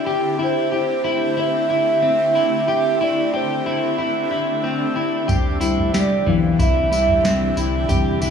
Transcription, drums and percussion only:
5.29 kick, floor tom, tambourine
5.61 tambourine
5.78 floor tom
5.94 snare, tambourine
6.27 floor tom
6.59 kick, floor tom, tambourine
6.93 tambourine
7.09 floor tom
7.25 snare, tambourine
7.57 tambourine
7.89 kick, floor tom, tambourine
8.22 tambourine

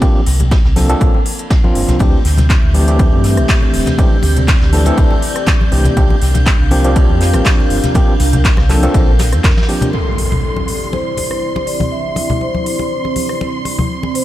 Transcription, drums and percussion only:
0.01 kick, closed hi-hat, ride, high conga
0.15 ride
0.26 snare, open hi-hat, ride
0.40 closed hi-hat, high conga, low conga
0.51 kick, snare, closed hi-hat, ride
0.65 snare
0.76 snare, open hi-hat, ride, high conga
0.89 closed hi-hat
1.00 kick, closed hi-hat, ride
1.14 high conga
1.25 open hi-hat, ride
1.39 closed hi-hat
1.50 kick, snare, closed hi-hat, ride
1.64 high conga
1.75 open hi-hat, ride
1.89 snare, closed hi-hat, low conga
1.99 kick, closed hi-hat, ride, muted conga, high conga
2.25 snare, open hi-hat, ride
2.38 snare, closed hi-hat, muted conga, high conga, low conga
2.50 kick, snare, clap, closed hi-hat, ride
2.63 ride, muted conga
2.74 open hi-hat, ride, high conga
2.88 closed hi-hat
2.99 kick, closed hi-hat, ride, muted conga
3.12 high conga
3.24 snare, open hi-hat, ride, muted conga
3.37 cross-stick, closed hi-hat
3.48 kick, snare, clap, closed hi-hat, ride
3.62 muted conga, high conga
3.74 open hi-hat, ride
3.86 snare, closed hi-hat, muted conga, low conga
3.98 kick, closed hi-hat, ride, high conga
4.12 ride
4.23 snare, open hi-hat, ride, muted conga
4.37 closed hi-hat, high conga, low conga
4.48 kick, snare, clap, closed hi-hat, ride, muted conga
4.61 snare
4.73 snare, open hi-hat, ride, high conga
4.86 closed hi-hat, muted conga
4.98 kick, closed hi-hat, ride
5.11 muted conga, high conga
5.22 open hi-hat, ride
5.36 cross-stick, closed hi-hat
5.47 kick, snare, clap, closed hi-hat, ride, muted conga
5.61 high conga
5.72 open hi-hat, ride, muted conga
5.85 snare, closed hi-hat, low conga
5.97 kick, closed hi-hat, ride, high conga
6.10 muted conga
6.21 snare, open hi-hat, ride
6.34 snare, closed hi-hat, muted conga, high conga, low conga
6.46 kick, snare, clap, closed hi-hat, ride
6.60 ride
6.71 open hi-hat, ride, muted conga, high conga
6.84 closed hi-hat
6.96 kick, closed hi-hat, ride, muted conga
7.09 high conga
7.21 snare, open hi-hat, ride
7.34 cross-stick, closed hi-hat, muted conga
7.45 kick, snare, clap, closed hi-hat, ride
7.59 muted conga, high conga
7.70 open hi-hat, ride
7.84 snare, closed hi-hat, low conga
7.94 kick, closed hi-hat, ride, muted conga, high conga
8.08 ride
8.20 snare, open hi-hat, ride, muted conga
8.33 closed hi-hat, high conga, low conga
8.45 kick, snare, clap, closed hi-hat, ride
8.57 cross-stick, snare, muted conga
8.69 snare, clap, open hi-hat, ride, high conga
8.83 closed hi-hat, muted conga
8.94 kick, closed hi-hat, ride
9.08 high conga
9.19 snare, open hi-hat, ride, muted conga
9.32 cross-stick, closed hi-hat, ride
9.44 kick, snare, clap, closed hi-hat, ride, muted conga
9.51 snare, ride
9.57 snare, ride, high conga
9.62 snare, ride
9.68 open hi-hat, ride
9.81 closed hi-hat, muted conga, low conga
9.93 muted conga
10.18 open hi-hat
10.32 muted conga, low conga
10.56 muted conga, high conga
10.68 open hi-hat
10.93 muted conga
11.17 open hi-hat, muted conga, high conga
11.31 cross-stick
11.56 muted conga
11.67 open hi-hat
11.80 muted conga, high conga, low conga
12.16 open hi-hat, muted conga
12.30 low conga
12.41 muted conga
12.55 high conga
12.66 open hi-hat
12.79 muted conga
13.05 muted conga
13.16 open hi-hat, high conga
13.29 cross-stick
13.41 muted conga
13.65 open hi-hat, muted conga
13.79 high conga, low conga
14.03 muted conga
14.15 open hi-hat

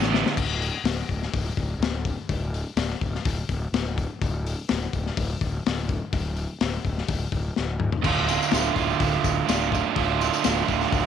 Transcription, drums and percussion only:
0.02 snare
0.14 snare
0.26 snare
0.37 kick, crash
0.62 open hi-hat
0.85 snare, open hi-hat
1.09 kick, open hi-hat
1.22 snare
1.34 kick, open hi-hat
1.57 kick, open hi-hat
1.82 snare, open hi-hat
2.05 kick, open hi-hat
2.29 kick, open hi-hat
2.54 open hi-hat
2.77 snare, open hi-hat
2.89 snare
3.01 kick, open hi-hat
3.15 snare
3.25 kick, open hi-hat
3.49 kick, open hi-hat
3.74 snare, open hi-hat
3.98 kick, open hi-hat
4.22 kick, open hi-hat
4.46 open hi-hat
4.69 snare, open hi-hat
4.93 kick, open hi-hat
5.06 snare
5.17 kick, open hi-hat
5.41 kick, open hi-hat
5.66 snare, open hi-hat
5.89 kick, open hi-hat
6.13 kick, open hi-hat
6.36 open hi-hat
6.61 snare, open hi-hat
6.85 kick, open hi-hat
6.98 snare
7.08 kick, open hi-hat
7.32 kick, open hi-hat
7.56 snare
7.80 mid tom
7.92 floor tom
8.04 kick, crash
8.28 open hi-hat, tambourine
8.42 tambourine
8.51 snare, open hi-hat, tambourine
8.66 tambourine
8.76 kick, open hi-hat, tambourine
8.90 tambourine
9.00 kick, open hi-hat, tambourine
9.24 kick, open hi-hat, tambourine
9.49 snare, open hi-hat, tambourine
9.72 kick, open hi-hat, tambourine
9.96 kick, open hi-hat
10.21 open hi-hat, tambourine
10.33 tambourine
10.44 snare, open hi-hat, tambourine
10.57 tambourine
10.69 kick, open hi-hat, tambourine
10.81 snare, tambourine
10.92 kick, open hi-hat, tambourine

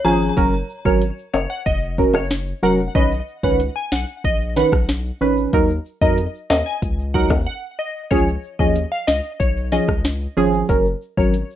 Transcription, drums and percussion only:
0.05 shaker
0.21 shaker
0.37 kick, closed hi-hat, shaker
0.53 shaker
0.69 shaker
0.85 kick, shaker
1.01 closed hi-hat, shaker
1.18 shaker
1.34 high timbale, shaker
1.50 shaker
1.66 kick, closed hi-hat, shaker
1.83 shaker
1.98 kick, shaker
2.14 cross-stick, high timbale, shaker
2.30 snare, closed hi-hat, shaker
2.47 shaker
2.63 shaker
2.79 shaker
2.95 kick, closed hi-hat, shaker
3.11 shaker
3.28 shaker
3.43 kick, shaker
3.59 closed hi-hat, shaker
3.77 shaker
3.92 snare, shaker
4.09 shaker
4.24 kick, closed hi-hat, shaker
4.41 shaker
4.56 snare, shaker
4.72 kick, cross-stick, shaker
4.89 snare, closed hi-hat, shaker
5.05 shaker
5.21 shaker
5.37 shaker
5.53 kick, closed hi-hat, shaker
5.69 shaker
5.85 shaker
6.01 kick, shaker
6.17 closed hi-hat, shaker
6.35 shaker
6.50 snare, high timbale, shaker
6.67 shaker
6.82 kick, closed hi-hat, shaker
6.99 shaker
7.14 kick, shaker
7.30 kick, cross-stick, high timbale, shaker
8.11 kick, closed hi-hat, shaker
8.28 shaker
8.44 shaker
8.59 kick, shaker
8.76 closed hi-hat, shaker
8.93 shaker
9.08 snare, shaker
9.25 shaker
9.40 kick, closed hi-hat, shaker
9.57 shaker
9.72 snare, shaker
9.88 kick, cross-stick, shaker
10.05 snare, closed hi-hat, shaker
10.21 shaker
10.37 shaker
10.53 shaker
10.69 kick, closed hi-hat, shaker
10.86 shaker
11.02 shaker
11.18 kick, shaker
11.34 closed hi-hat, shaker
11.51 shaker

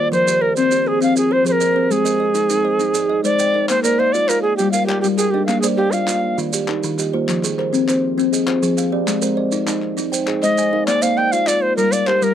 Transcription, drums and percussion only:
0.13 maracas
0.28 maracas
0.57 maracas
0.71 maracas
1.02 maracas
1.16 maracas
1.46 maracas
1.61 maracas
1.91 maracas
2.06 maracas
2.35 maracas
2.50 maracas
2.80 maracas
2.94 maracas
3.25 maracas
3.39 maracas
3.69 clap, maracas
3.84 clap, maracas
3.99 clap
4.14 maracas
4.29 clap, maracas
4.59 maracas
4.73 maracas
4.89 clap
5.04 maracas
5.18 clap, maracas
5.49 clap, maracas
5.63 clap, maracas
5.78 clap
5.93 maracas
6.07 clap, maracas
6.38 maracas
6.53 maracas
6.68 clap
6.83 maracas
6.99 clap, maracas
7.29 clap, maracas
7.43 clap, maracas
7.59 clap
7.74 maracas
7.88 clap, maracas
8.19 maracas
8.33 maracas
8.47 clap
8.63 maracas
8.78 clap, maracas
9.08 clap, maracas
9.22 maracas
9.52 maracas
9.67 clap, maracas
9.82 clap
9.98 maracas
10.13 maracas
10.27 clap
10.42 clap, maracas
10.58 maracas
10.88 clap, maracas
11.02 clap, maracas
11.18 clap
11.33 maracas
11.47 clap, maracas
11.78 maracas
11.92 maracas
12.07 clap
12.22 maracas

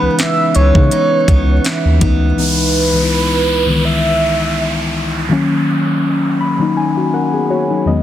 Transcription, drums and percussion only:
0.19 snare, closed hi-hat
0.55 closed hi-hat
0.75 kick
0.91 closed hi-hat
1.28 kick, closed hi-hat
1.65 snare, closed hi-hat
2.01 kick, closed hi-hat

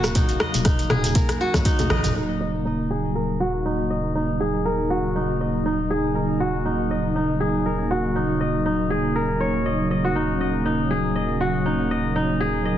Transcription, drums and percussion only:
0.04 cross-stick, shekere
0.15 kick, closed hi-hat, mid tom, shekere
0.29 closed hi-hat, shekere
0.40 cross-stick, djembe slap
0.54 closed hi-hat, high conga, shekere
0.65 kick, cross-stick, closed hi-hat, high conga, shekere
0.79 closed hi-hat, shekere
0.90 cross-stick, mid tom, high conga
1.03 closed hi-hat, djembe tone, shekere
1.15 kick, closed hi-hat, high conga, shekere
1.29 cross-stick, closed hi-hat, djembe slap, shekere
1.54 kick, cross-stick, closed hi-hat, low conga, shekere
1.65 kick, closed hi-hat, shekere
1.79 closed hi-hat, high tom, high conga, djembe tone, shekere
1.90 cross-stick, mid tom, djembe slap
2.04 closed hi-hat, mid tom, djembe tone, shekere

